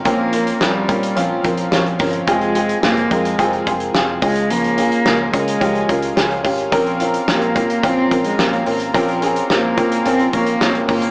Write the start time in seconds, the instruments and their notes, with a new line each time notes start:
Already playing: upright piano C4 C#4 D#4 A#4 C5, string section C#4 A#4 F5
0.05 fingered electric bass A#1, steel-string acoustic guitar A#2 F3 C4 C#4 F4, upright piano A#2 C4 C#4 A#4, cello A#3, string section C#5, kick, closed hi-hat
0.32 upright piano C4 C#4 A#4, steel-string acoustic guitar C4 C#4 F4, closed hi-hat
0.47 closed hi-hat
0.60 fingered electric bass A#1, steel-string acoustic guitar F3 C4 C#4 F4, cello G3, upright piano C4 C#4 A#4, snare
0.88 fingered electric bass A#2, upright piano C4 C#4 A#4, steel-string acoustic guitar C4 C#4 F4, kick, closed hi-hat
1.03 closed hi-hat
1.15 fingered electric bass A#1, steel-string acoustic guitar A#2 F3 C4 C#4 F4, cello F3, upright piano C4 C#4 F4, closed hi-hat
1.43 fingered electric bass A#1, upright piano C4 C#4 A#4, steel-string acoustic guitar C4 C#4 F4, kick, closed hi-hat
1.57 closed hi-hat
1.71 fingered electric bass A#1, steel-string acoustic guitar F3 C4 C#4 F4, upright piano C4 C#4 C#5, snare
1.86 closed hi-hat
1.99 fingered electric bass G1, cello F3, upright piano C4 C#4 A#4, steel-string acoustic guitar C4 C#4 F4, kick, snare, open hi-hat
2.13 closed hi-hat
2.27 fingered electric bass F1, steel-string acoustic guitar F2 C3 F3 G#3 C4 F4, cello G#3, upright piano C4 F4 G#4, string section F4 G#4 C5 G#5, kick, closed hi-hat
2.41 closed hi-hat
2.54 steel-string acoustic guitar F3 G#3 C4 F4, upright piano C4 F4 G#4, closed hi-hat
2.69 closed hi-hat
2.82 fingered electric bass F1, steel-string acoustic guitar F3 G#3 C4 F4, cello A#3, upright piano C4 F4 G#4, snare
2.97 closed hi-hat
3.10 fingered electric bass F2, steel-string acoustic guitar F3 G#3 C4 F4, cello G#3, upright piano C4 F4 A#4, kick, closed hi-hat
3.25 closed hi-hat
3.39 steel-string acoustic guitar F2 C3 F3 G#3 C4 F4, upright piano C4 F4 G#4, kick, closed hi-hat
3.53 closed hi-hat
3.66 fingered electric bass F1, steel-string acoustic guitar F3 G#3 C4 F4, upright piano C4 F4 G#4, kick, closed hi-hat
3.80 closed hi-hat
3.94 fingered electric bass F1, steel-string acoustic guitar F3 G#3 C4 F4, upright piano C4 F4 G#4, snare
4.22 fingered electric bass C#2, upright piano C#3 C#4 F4 G#4, cello G#3, steel-string acoustic guitar G#3 C#4 F4, string section F4 F5 G#5, kick, open hi-hat
4.36 closed hi-hat
4.50 steel-string acoustic guitar C#3 F3 G#3 C#4 F4, cello A#3, closed hi-hat
4.64 closed hi-hat
4.77 steel-string acoustic guitar G#3 C#4 F4, upright piano C#4 F4 G#4, closed hi-hat
4.92 closed hi-hat
5.05 fingered electric bass C#2, steel-string acoustic guitar F3 G#3 C#4 F4, upright piano C#4 F4 A#4, snare
5.33 fingered electric bass C#3, cello G#3, steel-string acoustic guitar G#3 C#4 F4, upright piano C#4 F4 A#4, kick, closed hi-hat
5.48 closed hi-hat
5.60 fingered electric bass C#2, steel-string acoustic guitar C#3 F3 G#3 C#4 F4, upright piano C#4 F4 G4, kick, closed hi-hat
5.75 closed hi-hat
5.88 fingered electric bass C#2, steel-string acoustic guitar G#3 C#4 F4, upright piano C#4 F4 A#4, kick, closed hi-hat
6.02 closed hi-hat
6.16 fingered electric bass C#2, steel-string acoustic guitar F3 G#3 C#4 F4, upright piano C#4 F4 G#4, snare
6.31 closed hi-hat
6.43 fingered electric bass G#1, steel-string acoustic guitar G#3 C#4 F4, upright piano C#4 F4 G4, kick, open hi-hat
6.58 closed hi-hat
6.71 fingered electric bass A#1, steel-string acoustic guitar A#2 F3 C4 C#4 F4, upright piano A#2 C4 C#4 A#4, string section C5 A#5, kick, closed hi-hat
6.86 closed hi-hat
6.99 upright piano C4 C#4 F4, steel-string acoustic guitar C4 C#4 F4, closed hi-hat
7.14 closed hi-hat
7.27 fingered electric bass A#1, steel-string acoustic guitar F3 C4 C#4 F4, cello A#3, upright piano C4 C#4 G4, snare
7.42 closed hi-hat
7.55 fingered electric bass A#2, upright piano C4 C#4 A#4, steel-string acoustic guitar C4 C#4 F4, kick, closed hi-hat
7.70 closed hi-hat
7.82 fingered electric bass A#1, steel-string acoustic guitar A#2 F3 C4 C#4 F4, upright piano C4 C#4 F4, cello C4, kick, closed hi-hat
8.10 fingered electric bass A#1, upright piano C4 C#4 A#4, steel-string acoustic guitar C4 C#4 F4, kick, closed hi-hat
8.24 cello G#3, closed hi-hat
8.38 fingered electric bass A#1, steel-string acoustic guitar F3 C4 C#4 F4, cello A#3, upright piano C4 C#4 A#4, snare
8.53 closed hi-hat
8.65 fingered electric bass G#1, upright piano C4 C#4 A#4, steel-string acoustic guitar C4 C#4 F4, open hi-hat
8.80 closed hi-hat
8.94 fingered electric bass A#1, steel-string acoustic guitar A#2 F3 C4 C#4 F4, upright piano A#2 C4 C#4 A#4, kick, closed hi-hat
9.09 closed hi-hat
9.21 upright piano C4 C#4 G#4, steel-string acoustic guitar C4 C#4 F4, closed hi-hat
9.36 closed hi-hat
9.49 fingered electric bass A#1, steel-string acoustic guitar F3 C4 C#4 F4, cello A#3, upright piano C4 C#4 A#4, snare
9.77 fingered electric bass A#2, upright piano C4 C#4 A#4, steel-string acoustic guitar C4 C#4 F4, kick, closed hi-hat
9.92 closed hi-hat
10.05 fingered electric bass A#1, steel-string acoustic guitar A#2 F3 C4 C#4 F4, upright piano C4 C#4 A#4, cello C4, closed hi-hat
10.19 closed hi-hat
10.32 fingered electric bass A#1, cello A#3, upright piano C4 C#4 C#5, steel-string acoustic guitar C4 C#4 F4, kick, closed hi-hat
10.47 closed hi-hat
10.60 fingered electric bass A#1, steel-string acoustic guitar F3 C4 C#4 F4, upright piano C4 C#4 C#5, snare
10.75 closed hi-hat
10.88 fingered electric bass G1, cello A#3, upright piano C4 C#4 A#4, steel-string acoustic guitar C4 C#4 F4, kick, open hi-hat
11.02 closed hi-hat